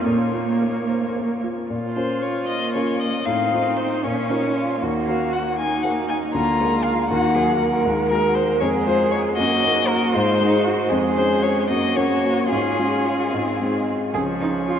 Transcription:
0.05 grand piano A#2, cello A#3, viola A#3, violin C#5
0.34 grand piano F4
0.61 grand piano A#4
0.89 grand piano C5
1.17 grand piano A#4
1.44 grand piano F4
1.70 grand piano A#2, viola F4
1.96 grand piano C#4 F4 A#4, violin C5
2.22 violin C#5
2.48 cello A#3, violin D#5
2.74 grand piano C#4 F4 A#4, violin C#5
3.00 violin D#5
3.26 grand piano A2, cello C4, viola D#4, violin F5
3.53 grand piano D#4 F4 C5
3.77 violin C5
4.04 grand piano A#2, viola C#4, cello C#4, violin C#5
4.29 grand piano C#4 F4 A#4, cello D#4
4.57 cello F4
4.82 grand piano D#2, viola A#3, cello F#4
5.07 grand piano A#3 F#4 A#4, violin F5
5.33 violin F#5
5.59 cello D#4, violin G#5
5.83 grand piano A#3 F#4 A#4, violin F#5
6.09 violin G#5
6.33 grand piano D2, viola A#3, cello F4, violin A#5
6.60 grand piano G#3 F4 A#4
6.84 violin F5
7.09 grand piano D#2, viola A#3, cello F#4, violin F#5
7.35 grand piano F#3 F#4 A#4, cello G#4
7.60 cello A#4
7.85 grand piano D#2, viola G#3
8.10 grand piano G#3 F#4 G#4, violin A#4
8.35 violin C5
8.60 grand piano F2, viola G#3, cello G#4, violin C#5
8.85 grand piano G#3 F4 G#4, violin C5
9.11 violin C#5
9.36 grand piano F#2, viola A#3, cello F#4, violin D#5
9.63 grand piano A#3 D#4
9.88 violin A#4
10.13 grand piano G#2, viola G#3, cello F4, violin C5
10.39 grand piano G#3 D#4 G#4, cello D#4
10.64 cello F#4
10.89 grand piano F2, viola G#3, cello G#4
11.16 grand piano G#3 C#4 G#4, violin C5
11.43 violin C#5
11.69 grand piano F#2, viola A#3, cello F#4, violin D#5
11.96 grand piano A#3 C#4 F#4, violin C#5
12.51 grand piano G#2, viola C#4, cello F4, violin G#4
12.79 grand piano G#3 C#4 F4
13.33 grand piano G#2, viola C4
13.60 grand piano G#3 C4 D#4
14.14 grand piano C#2, viola F3, cello G#4, violin C#5
14.41 grand piano C#4, cello D#4
14.67 cello F4, grand piano F4

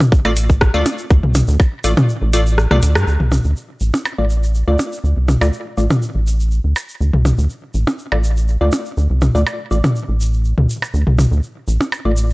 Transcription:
0.00 high tom, percussion blips, shaker
0.12 kick, shaker
0.25 analog synth bass A1, synth stab A3 F4 D5, percussion blips
0.36 open hi-hat, shaker
0.50 kick, shaker
0.61 kick, cross-stick, shaker
0.74 analog synth bass D2, synth stab A3 F4 D5
0.86 open hi-hat, percussion blips, shaker
0.98 shaker
1.10 analog synth bass D2, kick, shaker
1.23 analog synth bass C2, high tom
1.35 open hi-hat, high tom, percussion blips, shaker
1.48 analog synth bass D2, shaker
1.60 kick, percussion blips, shaker
1.84 analog synth bass A1, synth stab A3 F4 D5, open hi-hat, shaker
1.97 high tom, percussion blips, shaker
2.09 shaker
2.22 analog synth bass A1
2.33 synth stab A3 F4 D5, open hi-hat, shaker
2.46 shaker
2.58 cross-stick, shaker
2.71 analog synth bass C2, synth stab A3 F4 D5, cross-stick, high tom
2.82 analog synth bass D2, open hi-hat, shaker
2.95 analog synth bass G2, cross-stick, percussion blips, shaker
3.07 analog synth bass D2, shaker
3.20 analog synth bass C2, high tom
3.32 high tom, percussion blips, shaker
3.44 analog synth bass D2, shaker
3.56 shaker
3.80 analog synth bass A1, shaker
3.94 percussion blips, shaker
4.05 percussion blips, shaker
4.18 analog synth bass A1, synth stab A3 F4 D5
4.30 shaker
4.43 shaker
4.55 shaker
4.68 analog synth bass D2, synth stab A3 F4 D5
4.79 percussion blips, shaker
4.92 shaker
5.04 analog synth bass D2, shaker
5.17 analog synth bass C2
5.28 high tom, percussion blips, shaker
5.41 analog synth bass D2, synth stab A3 F4 D5, percussion blips, shaker
5.53 shaker
5.77 analog synth bass A1, synth stab A3 F4 D5, shaker
5.90 high tom, percussion blips, shaker
6.02 shaker
6.15 analog synth bass A1
6.27 shaker
6.40 shaker
6.51 shaker
6.64 analog synth bass D2
6.76 percussion blips, shaker
6.89 shaker
7.01 analog synth bass D2, shaker
7.13 analog synth bass C2, high tom
7.25 high tom, percussion blips, shaker
7.38 analog synth bass D2, shaker
7.50 shaker
7.74 analog synth bass A1, shaker
7.87 percussion blips, shaker
7.99 shaker
8.12 analog synth bass A1, synth stab A3 F4 D5, percussion blips
8.24 shaker
8.37 shaker
8.48 shaker
8.61 analog synth bass D2, synth stab A3 F4 D5
8.72 percussion blips, shaker
8.85 shaker
8.97 analog synth bass D2, shaker
9.10 analog synth bass C2
9.21 high tom, percussion blips, shaker
9.35 analog synth bass D2, synth stab A3 F4 D5, shaker
9.47 percussion blips, shaker
9.71 analog synth bass A1, synth stab A3 F4 D5, shaker
9.84 high tom, percussion blips, shaker
9.96 shaker
10.09 analog synth bass A1
10.21 shaker
10.33 shaker
10.45 shaker
10.58 analog synth bass D2, high tom
10.70 shaker
10.82 percussion blips, shaker
10.94 analog synth bass D2, shaker
11.07 analog synth bass C2, high tom
11.19 high tom, percussion blips, shaker
11.31 analog synth bass D2, shaker
11.43 shaker
11.68 analog synth bass A1, shaker
11.81 percussion blips, shaker
11.92 percussion blips, shaker
12.05 analog synth bass A1, synth stab A3 F4 D5
12.17 shaker
12.30 shaker

